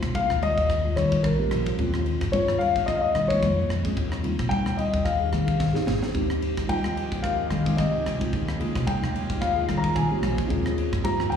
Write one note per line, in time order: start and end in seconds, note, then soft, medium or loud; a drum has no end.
0.00 0.29 C3 medium
0.00 0.29 G#3 medium
0.00 0.29 A#3 medium
0.00 0.29 C#4 medium
0.00 0.30 F4 medium
0.00 kick medium
0.00 cross-stick medium
0.00 ride medium
0.15 0.43 F5 loud
0.15 kick loud
0.15 ride medium
0.15 high conga medium
0.30 0.56 D#2 medium
0.30 cross-stick medium
0.41 0.72 G#3 medium
0.41 0.73 A#3 medium
0.41 0.73 C#4 medium
0.41 0.73 F4 medium
0.41 0.99 D#5 loud
0.41 ride medium
0.57 0.94 D#2 medium
0.57 kick medium
0.57 ride medium
0.70 kick medium
0.70 cross-stick medium
0.70 ride medium
0.70 muted conga soft
0.83 1.23 G#3 medium
0.83 1.23 A#3 medium
0.83 1.24 C#4 medium
0.83 1.24 F4 medium
0.96 1.22 D#3 medium
0.96 1.25 C#5 medium
0.96 cross-stick medium
0.96 ride medium
0.96 muted conga soft
0.96 high conga medium
1.12 kick medium
1.12 ride medium
1.23 1.50 A#1 medium
1.23 1.63 A#4 medium
1.23 kick loud
1.23 cross-stick medium
1.23 ride medium
1.38 1.69 G#3 medium
1.38 1.69 A#3 medium
1.38 1.69 C#4 medium
1.38 1.69 G4 medium
1.51 1.77 A#1 medium
1.51 cross-stick medium
1.51 ride medium
1.51 muted conga soft
1.51 high conga medium
1.51 low conga medium
1.66 kick medium
1.66 ride medium
1.78 2.04 D#2 medium
1.78 2.20 G#3 loud
1.78 2.20 C4 medium
1.78 2.20 C#4 medium
1.78 2.21 F4 loud
1.78 kick medium
1.78 ride medium
1.78 muted conga soft
1.94 cross-stick medium
2.06 ride medium
2.21 2.47 G2 medium
2.21 kick medium
2.21 cross-stick medium
2.21 ride medium
2.32 2.75 G#3 medium
2.32 2.75 C4 medium
2.32 2.75 C#4 medium
2.32 2.75 F4 medium
2.32 2.61 C#5 medium
2.32 kick loud
2.32 ride medium
2.32 high conga medium
2.48 2.74 D#2 medium
2.48 cross-stick medium
2.58 2.88 F5 medium
2.58 ride medium
2.76 3.13 D#2 medium
2.76 kick medium
2.76 ride medium
2.86 3.18 G#3 medium
2.86 3.18 C4 medium
2.86 3.19 C#4 medium
2.86 3.19 F4 medium
2.86 2.95 D#5 medium
2.86 kick medium
2.86 cross-stick medium
2.86 ride medium
2.86 muted conga soft
2.94 3.03 F5 medium
3.01 3.30 D#5 medium
3.15 3.41 D#3 medium
3.15 cross-stick medium
3.15 ride medium
3.15 muted conga soft
3.15 high conga medium
3.28 3.69 G#3 medium
3.28 3.69 A#3 medium
3.28 3.70 C#4 medium
3.28 3.70 F4 medium
3.28 3.66 C#5 medium
3.28 kick medium
3.28 ride medium
3.43 3.68 F2 medium
3.43 kick loud
3.43 cross-stick medium
3.43 ride medium
3.43 high conga medium
3.69 3.95 F2 medium
3.69 cross-stick medium
3.69 ride medium
3.69 muted conga soft
3.83 3.96 G#3 medium
3.83 3.97 C4 medium
3.83 3.97 C#4 medium
3.83 3.97 G#4 medium
3.83 kick medium
3.83 ride medium
3.97 4.23 D#2 loud
3.97 kick medium
3.97 ride soft
3.97 muted conga soft
4.12 cross-stick medium
4.22 4.65 G3 medium
4.22 4.65 C4 medium
4.22 4.65 D#4 medium
4.22 4.66 F4 medium
4.22 ride medium
4.22 low conga medium
4.39 4.65 A#2 medium
4.39 kick medium
4.39 cross-stick medium
4.39 ride soft
4.49 4.78 G5 loud
4.49 kick loud
4.49 ride medium
4.49 high conga medium
4.66 4.92 D#2 medium
4.66 cross-stick medium
4.77 5.08 G3 medium
4.77 5.08 C4 medium
4.77 5.09 D#4 medium
4.77 5.09 F4 medium
4.77 5.06 D#5 medium
4.77 ride medium
4.93 5.31 D#2 medium
4.93 kick medium
4.93 ride medium
5.05 5.83 F5 medium
5.05 kick medium
5.05 cross-stick medium
5.05 ride medium
5.05 muted conga soft
5.20 5.59 C4 medium
5.20 5.59 D#4 medium
5.20 5.59 G4 medium
5.20 5.60 G#4 medium
5.32 5.58 D#3 medium
5.32 cross-stick medium
5.32 ride medium
5.32 muted conga soft
5.32 high conga medium
5.48 kick medium
5.48 ride medium
5.60 5.86 G#1 medium
5.60 kick loud
5.60 snare medium
5.73 6.05 C4 medium
5.73 6.05 D#4 medium
5.73 6.04 G4 medium
5.73 6.05 G#4 loud
5.73 snare medium
5.87 6.13 G#1 medium
5.87 snare medium
5.87 low conga medium
6.03 snare medium
6.13 6.40 D#2 loud
6.13 8.30 F3 medium
6.13 6.56 G#3 loud
6.13 10.46 G#3 medium
6.13 6.56 C4 medium
6.13 6.56 D#4 medium
6.13 10.46 D#4 medium
6.13 6.56 G4 loud
6.13 8.31 G4 medium
6.13 kick medium
6.13 ride medium
6.13 muted conga soft
6.30 cross-stick medium
6.42 ride medium
6.57 6.83 D#3 medium
6.57 kick medium
6.57 cross-stick medium
6.57 ride medium
6.67 7.10 G#3 medium
6.67 7.10 C4 medium
6.67 7.10 D#4 medium
6.67 7.11 F4 medium
6.67 7.25 G5 medium
6.67 kick loud
6.67 ride medium
6.67 high conga medium
6.84 7.10 D#2 medium
6.84 cross-stick medium
6.97 ride medium
7.12 7.48 D#2 medium
7.12 kick medium
7.12 ride medium
7.22 7.54 G#3 medium
7.22 7.54 C4 medium
7.22 7.54 D#4 medium
7.22 7.54 A#4 medium
7.22 7.79 F5 medium
7.22 kick medium
7.22 cross-stick medium
7.22 ride medium
7.22 muted conga soft
7.50 7.76 D#3 medium
7.50 cross-stick medium
7.50 ride medium
7.50 muted conga soft
7.50 high conga medium
7.64 8.04 G#3 medium
7.64 8.04 C4 medium
7.64 8.04 D#4 medium
7.64 8.04 G4 medium
7.64 kick medium
7.64 ride medium
7.77 8.04 C2 medium
7.77 8.17 D#5 medium
7.77 kick medium
7.77 cross-stick medium
7.77 ride medium
7.77 high conga medium
8.06 8.31 C2 medium
8.06 cross-stick medium
8.06 ride medium
8.06 muted conga soft
8.19 8.32 G#3 medium
8.19 8.32 C4 medium
8.19 8.32 D#4 medium
8.19 8.33 F4 medium
8.19 kick medium
8.19 ride medium
8.33 8.58 D#2 loud
8.33 10.48 C#3 medium
8.33 10.48 F4 medium
8.33 kick medium
8.33 ride medium
8.33 muted conga soft
8.49 cross-stick medium
8.58 9.01 A#3 medium
8.58 9.01 C#4 medium
8.58 9.01 F4 medium
8.58 9.01 G#4 medium
8.58 ride medium
8.58 low conga medium
8.75 9.01 C3 medium
8.75 kick medium
8.75 cross-stick medium
8.75 ride medium
8.87 9.38 G5 medium
8.87 kick loud
8.87 ride medium
8.87 high conga medium
9.02 9.28 D#2 medium
9.02 cross-stick medium
9.14 9.44 A#3 medium
9.14 9.45 C#4 medium
9.14 9.45 F4 medium
9.14 9.45 G4 medium
9.14 ride medium
9.30 9.66 D#2 medium
9.30 kick medium
9.30 ride medium
9.41 9.79 F5 medium
9.41 kick medium
9.41 cross-stick medium
9.41 ride medium
9.41 muted conga soft
9.55 9.94 A#3 medium
9.55 9.94 C#4 medium
9.55 9.95 F4 medium
9.55 9.95 G#4 medium
9.69 9.94 D#3 medium
9.69 cross-stick medium
9.69 ride medium
9.69 muted conga soft
9.69 high conga medium
9.77 9.96 A#5 medium
9.84 kick medium
9.84 ride medium
9.95 10.21 A#1 medium
9.95 10.35 G#5 medium
9.95 kick loud
9.95 cross-stick medium
9.95 ride medium
10.10 10.40 A#3 medium
10.10 10.40 C#4 medium
10.10 10.41 F4 medium
10.10 10.41 G4 medium
10.23 10.49 A#1 medium
10.23 cross-stick medium
10.23 ride medium
10.23 muted conga soft
10.23 high conga medium
10.23 low conga medium
10.38 kick medium
10.38 ride medium
10.48 10.76 D#2 loud
10.48 11.37 C#3 medium
10.48 11.37 G#3 medium
10.48 11.37 A#3 medium
10.48 10.91 C4 medium
10.48 10.91 C#4 medium
10.48 10.91 F4 medium
10.48 10.92 G#4 loud
10.48 kick medium
10.48 ride medium
10.48 muted conga soft
10.66 cross-stick medium
10.78 ride medium
10.93 11.18 G2 medium
10.93 kick medium
10.93 cross-stick medium
10.93 ride medium
11.03 11.37 C4 medium
11.03 11.37 C#4 medium
11.03 11.37 F4 medium
11.03 11.37 G4 loud
11.03 11.32 A#5 loud
11.03 kick loud
11.03 ride medium
11.03 high conga medium
11.19 11.37 D#2 medium
11.19 cross-stick medium
11.30 11.37 G5 medium
11.30 ride medium